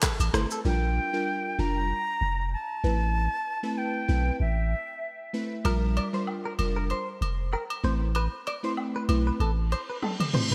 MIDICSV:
0, 0, Header, 1, 7, 480
1, 0, Start_track
1, 0, Key_signature, 0, "minor"
1, 0, Tempo, 625000
1, 498, Time_signature, 4, 2, 24, 8
1, 8100, End_track
2, 0, Start_track
2, 0, Title_t, "Flute"
2, 0, Program_c, 0, 73
2, 0, Note_on_c, 0, 81, 105
2, 258, Note_off_c, 0, 81, 0
2, 507, Note_on_c, 0, 79, 108
2, 1225, Note_on_c, 0, 82, 115
2, 1237, Note_off_c, 0, 79, 0
2, 1940, Note_off_c, 0, 82, 0
2, 1945, Note_on_c, 0, 81, 112
2, 2902, Note_on_c, 0, 79, 91
2, 2913, Note_off_c, 0, 81, 0
2, 3380, Note_off_c, 0, 79, 0
2, 3384, Note_on_c, 0, 76, 86
2, 4071, Note_off_c, 0, 76, 0
2, 8100, End_track
3, 0, Start_track
3, 0, Title_t, "Clean electric guitar"
3, 0, Program_c, 1, 27
3, 26, Note_on_c, 1, 71, 82
3, 94, Note_off_c, 1, 71, 0
3, 266, Note_on_c, 1, 72, 85
3, 334, Note_off_c, 1, 72, 0
3, 398, Note_on_c, 1, 69, 73
3, 453, Note_off_c, 1, 69, 0
3, 4345, Note_on_c, 1, 70, 94
3, 4413, Note_off_c, 1, 70, 0
3, 4585, Note_on_c, 1, 74, 72
3, 4653, Note_off_c, 1, 74, 0
3, 4718, Note_on_c, 1, 72, 73
3, 4773, Note_off_c, 1, 72, 0
3, 4957, Note_on_c, 1, 70, 74
3, 5013, Note_off_c, 1, 70, 0
3, 5195, Note_on_c, 1, 70, 71
3, 5251, Note_off_c, 1, 70, 0
3, 5306, Note_on_c, 1, 72, 83
3, 5431, Note_off_c, 1, 72, 0
3, 5786, Note_on_c, 1, 70, 75
3, 5854, Note_off_c, 1, 70, 0
3, 6025, Note_on_c, 1, 72, 77
3, 6093, Note_off_c, 1, 72, 0
3, 6267, Note_on_c, 1, 71, 91
3, 6334, Note_off_c, 1, 71, 0
3, 6509, Note_on_c, 1, 74, 74
3, 6576, Note_off_c, 1, 74, 0
3, 6640, Note_on_c, 1, 72, 74
3, 6695, Note_off_c, 1, 72, 0
3, 6880, Note_on_c, 1, 71, 78
3, 6934, Note_off_c, 1, 71, 0
3, 7120, Note_on_c, 1, 71, 64
3, 7174, Note_off_c, 1, 71, 0
3, 7227, Note_on_c, 1, 69, 74
3, 7295, Note_off_c, 1, 69, 0
3, 7467, Note_on_c, 1, 72, 74
3, 7535, Note_off_c, 1, 72, 0
3, 7599, Note_on_c, 1, 71, 77
3, 7654, Note_off_c, 1, 71, 0
3, 7708, Note_on_c, 1, 69, 76
3, 7775, Note_off_c, 1, 69, 0
3, 7946, Note_on_c, 1, 72, 77
3, 8014, Note_off_c, 1, 72, 0
3, 8100, End_track
4, 0, Start_track
4, 0, Title_t, "Synth keys"
4, 0, Program_c, 2, 88
4, 256, Note_on_c, 2, 57, 76
4, 257, Note_on_c, 2, 60, 71
4, 259, Note_on_c, 2, 64, 74
4, 261, Note_on_c, 2, 71, 86
4, 423, Note_off_c, 2, 57, 0
4, 424, Note_off_c, 2, 60, 0
4, 424, Note_off_c, 2, 64, 0
4, 425, Note_off_c, 2, 71, 0
4, 497, Note_on_c, 2, 55, 88
4, 497, Note_on_c, 2, 62, 80
4, 499, Note_on_c, 2, 65, 81
4, 500, Note_on_c, 2, 70, 97
4, 838, Note_off_c, 2, 55, 0
4, 838, Note_off_c, 2, 62, 0
4, 839, Note_off_c, 2, 65, 0
4, 840, Note_off_c, 2, 70, 0
4, 868, Note_on_c, 2, 55, 72
4, 871, Note_on_c, 2, 62, 65
4, 872, Note_on_c, 2, 65, 64
4, 874, Note_on_c, 2, 70, 82
4, 1191, Note_off_c, 2, 55, 0
4, 1193, Note_off_c, 2, 62, 0
4, 1193, Note_off_c, 2, 65, 0
4, 1194, Note_off_c, 2, 70, 0
4, 1216, Note_on_c, 2, 55, 74
4, 1218, Note_on_c, 2, 62, 69
4, 1219, Note_on_c, 2, 65, 70
4, 1222, Note_on_c, 2, 70, 82
4, 1440, Note_off_c, 2, 55, 0
4, 1441, Note_off_c, 2, 62, 0
4, 1441, Note_off_c, 2, 65, 0
4, 1443, Note_off_c, 2, 70, 0
4, 2177, Note_on_c, 2, 57, 73
4, 2178, Note_on_c, 2, 60, 67
4, 2180, Note_on_c, 2, 64, 67
4, 2181, Note_on_c, 2, 71, 84
4, 2343, Note_off_c, 2, 57, 0
4, 2344, Note_off_c, 2, 60, 0
4, 2345, Note_off_c, 2, 64, 0
4, 2346, Note_off_c, 2, 71, 0
4, 2787, Note_on_c, 2, 57, 71
4, 2789, Note_on_c, 2, 60, 70
4, 2790, Note_on_c, 2, 64, 65
4, 2792, Note_on_c, 2, 71, 81
4, 3111, Note_off_c, 2, 57, 0
4, 3112, Note_off_c, 2, 60, 0
4, 3112, Note_off_c, 2, 64, 0
4, 3113, Note_off_c, 2, 71, 0
4, 3133, Note_on_c, 2, 57, 75
4, 3134, Note_on_c, 2, 60, 70
4, 3136, Note_on_c, 2, 64, 68
4, 3139, Note_on_c, 2, 71, 82
4, 3358, Note_off_c, 2, 57, 0
4, 3359, Note_off_c, 2, 60, 0
4, 3360, Note_off_c, 2, 64, 0
4, 3361, Note_off_c, 2, 71, 0
4, 4096, Note_on_c, 2, 57, 75
4, 4099, Note_on_c, 2, 60, 67
4, 4099, Note_on_c, 2, 64, 68
4, 4100, Note_on_c, 2, 71, 84
4, 4263, Note_off_c, 2, 57, 0
4, 4264, Note_off_c, 2, 60, 0
4, 4265, Note_off_c, 2, 64, 0
4, 4265, Note_off_c, 2, 71, 0
4, 4334, Note_on_c, 2, 55, 89
4, 4336, Note_on_c, 2, 62, 84
4, 4338, Note_on_c, 2, 65, 83
4, 4339, Note_on_c, 2, 70, 97
4, 4676, Note_off_c, 2, 55, 0
4, 4677, Note_off_c, 2, 62, 0
4, 4678, Note_off_c, 2, 65, 0
4, 4679, Note_off_c, 2, 70, 0
4, 4708, Note_on_c, 2, 55, 77
4, 4709, Note_on_c, 2, 62, 65
4, 4710, Note_on_c, 2, 65, 66
4, 4713, Note_on_c, 2, 70, 78
4, 5031, Note_off_c, 2, 55, 0
4, 5032, Note_off_c, 2, 62, 0
4, 5032, Note_off_c, 2, 65, 0
4, 5034, Note_off_c, 2, 70, 0
4, 5057, Note_on_c, 2, 55, 75
4, 5058, Note_on_c, 2, 62, 73
4, 5061, Note_on_c, 2, 65, 67
4, 5062, Note_on_c, 2, 70, 85
4, 5280, Note_off_c, 2, 55, 0
4, 5281, Note_off_c, 2, 62, 0
4, 5282, Note_off_c, 2, 65, 0
4, 5283, Note_off_c, 2, 70, 0
4, 6016, Note_on_c, 2, 57, 76
4, 6016, Note_on_c, 2, 60, 69
4, 6017, Note_on_c, 2, 64, 70
4, 6020, Note_on_c, 2, 71, 81
4, 6183, Note_off_c, 2, 57, 0
4, 6183, Note_off_c, 2, 60, 0
4, 6184, Note_off_c, 2, 64, 0
4, 6185, Note_off_c, 2, 71, 0
4, 6628, Note_on_c, 2, 57, 72
4, 6629, Note_on_c, 2, 60, 66
4, 6632, Note_on_c, 2, 64, 66
4, 6633, Note_on_c, 2, 71, 81
4, 6951, Note_off_c, 2, 57, 0
4, 6952, Note_off_c, 2, 60, 0
4, 6953, Note_off_c, 2, 64, 0
4, 6954, Note_off_c, 2, 71, 0
4, 6978, Note_on_c, 2, 57, 76
4, 6979, Note_on_c, 2, 60, 71
4, 6981, Note_on_c, 2, 64, 71
4, 6983, Note_on_c, 2, 71, 85
4, 7201, Note_off_c, 2, 57, 0
4, 7201, Note_off_c, 2, 60, 0
4, 7202, Note_off_c, 2, 64, 0
4, 7204, Note_off_c, 2, 71, 0
4, 7934, Note_on_c, 2, 57, 77
4, 7936, Note_on_c, 2, 60, 70
4, 7937, Note_on_c, 2, 64, 68
4, 7940, Note_on_c, 2, 71, 82
4, 8100, Note_off_c, 2, 57, 0
4, 8100, Note_off_c, 2, 60, 0
4, 8100, Note_off_c, 2, 64, 0
4, 8100, Note_off_c, 2, 71, 0
4, 8100, End_track
5, 0, Start_track
5, 0, Title_t, "Sub bass"
5, 0, Program_c, 3, 38
5, 151, Note_on_c, 3, 33, 98
5, 228, Note_off_c, 3, 33, 0
5, 259, Note_on_c, 3, 31, 94
5, 353, Note_off_c, 3, 31, 0
5, 498, Note_on_c, 3, 34, 114
5, 763, Note_off_c, 3, 34, 0
5, 1219, Note_on_c, 3, 29, 94
5, 1484, Note_off_c, 3, 29, 0
5, 1699, Note_on_c, 3, 29, 87
5, 1963, Note_off_c, 3, 29, 0
5, 2180, Note_on_c, 3, 33, 91
5, 2521, Note_off_c, 3, 33, 0
5, 3139, Note_on_c, 3, 35, 94
5, 3310, Note_off_c, 3, 35, 0
5, 3379, Note_on_c, 3, 33, 99
5, 3644, Note_off_c, 3, 33, 0
5, 4339, Note_on_c, 3, 34, 118
5, 4604, Note_off_c, 3, 34, 0
5, 5060, Note_on_c, 3, 29, 95
5, 5324, Note_off_c, 3, 29, 0
5, 5539, Note_on_c, 3, 29, 83
5, 5804, Note_off_c, 3, 29, 0
5, 6019, Note_on_c, 3, 33, 94
5, 6361, Note_off_c, 3, 33, 0
5, 6979, Note_on_c, 3, 35, 95
5, 7150, Note_off_c, 3, 35, 0
5, 7218, Note_on_c, 3, 33, 106
5, 7483, Note_off_c, 3, 33, 0
5, 8100, End_track
6, 0, Start_track
6, 0, Title_t, "Reverse cymbal"
6, 0, Program_c, 4, 119
6, 7220, Note_on_c, 4, 60, 82
6, 8100, Note_off_c, 4, 60, 0
6, 8100, End_track
7, 0, Start_track
7, 0, Title_t, "Drums"
7, 20, Note_on_c, 9, 37, 88
7, 20, Note_on_c, 9, 39, 86
7, 20, Note_on_c, 9, 77, 72
7, 21, Note_on_c, 9, 36, 90
7, 21, Note_on_c, 9, 82, 83
7, 97, Note_off_c, 9, 36, 0
7, 97, Note_off_c, 9, 37, 0
7, 97, Note_off_c, 9, 39, 0
7, 97, Note_off_c, 9, 77, 0
7, 98, Note_off_c, 9, 82, 0
7, 154, Note_on_c, 9, 82, 60
7, 158, Note_on_c, 9, 67, 81
7, 231, Note_off_c, 9, 82, 0
7, 235, Note_off_c, 9, 67, 0
7, 261, Note_on_c, 9, 37, 97
7, 265, Note_on_c, 9, 82, 60
7, 338, Note_off_c, 9, 37, 0
7, 342, Note_off_c, 9, 82, 0
7, 390, Note_on_c, 9, 82, 86
7, 467, Note_off_c, 9, 82, 0
7, 4338, Note_on_c, 9, 67, 84
7, 4415, Note_off_c, 9, 67, 0
7, 4583, Note_on_c, 9, 67, 77
7, 4660, Note_off_c, 9, 67, 0
7, 4818, Note_on_c, 9, 77, 75
7, 4894, Note_off_c, 9, 77, 0
7, 5059, Note_on_c, 9, 67, 81
7, 5136, Note_off_c, 9, 67, 0
7, 5300, Note_on_c, 9, 67, 60
7, 5376, Note_off_c, 9, 67, 0
7, 5545, Note_on_c, 9, 67, 68
7, 5622, Note_off_c, 9, 67, 0
7, 5780, Note_on_c, 9, 77, 66
7, 5856, Note_off_c, 9, 77, 0
7, 5916, Note_on_c, 9, 67, 79
7, 5993, Note_off_c, 9, 67, 0
7, 6259, Note_on_c, 9, 67, 79
7, 6335, Note_off_c, 9, 67, 0
7, 6504, Note_on_c, 9, 67, 77
7, 6581, Note_off_c, 9, 67, 0
7, 6738, Note_on_c, 9, 77, 75
7, 6815, Note_off_c, 9, 77, 0
7, 6980, Note_on_c, 9, 67, 81
7, 7056, Note_off_c, 9, 67, 0
7, 7222, Note_on_c, 9, 67, 61
7, 7298, Note_off_c, 9, 67, 0
7, 7465, Note_on_c, 9, 67, 68
7, 7542, Note_off_c, 9, 67, 0
7, 7699, Note_on_c, 9, 77, 69
7, 7700, Note_on_c, 9, 48, 54
7, 7776, Note_off_c, 9, 48, 0
7, 7776, Note_off_c, 9, 77, 0
7, 7832, Note_on_c, 9, 47, 61
7, 7837, Note_on_c, 9, 67, 80
7, 7909, Note_off_c, 9, 47, 0
7, 7914, Note_off_c, 9, 67, 0
7, 7940, Note_on_c, 9, 45, 89
7, 8017, Note_off_c, 9, 45, 0
7, 8073, Note_on_c, 9, 43, 86
7, 8100, Note_off_c, 9, 43, 0
7, 8100, End_track
0, 0, End_of_file